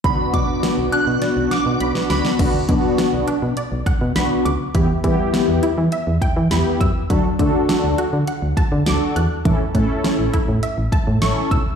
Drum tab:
CC |----------------|x---------------|----------------|----------------|
HH |x-x-x-x-x-x-x-x-|x-x-x-x-x-x-x-x-|x-x-x-x-x-x-x-x-|x-x-x-x-x-x-x-x-|
SD |----o---o-o--ooo|----o-------o---|----o-------o---|----o-------o---|
BD |o-o-------------|o-o-------o-----|o-o-------o---o-|o-o-------o-----|

CC |----------------|
HH |x-x-x-x-x-x-x-x-|
SD |----o-------o---|
BD |o-o---o---o---o-|